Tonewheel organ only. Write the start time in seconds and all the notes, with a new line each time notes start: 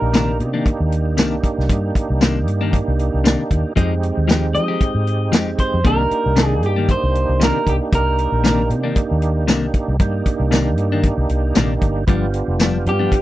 Already playing: A#3 D4 D#4 G4
3.76 G#3 C4 D#4 G4
5.84 A#3 D4 D#4 G4
10.00 A#3 D4 D#4 G4
12.07 B3 D4 F4 G4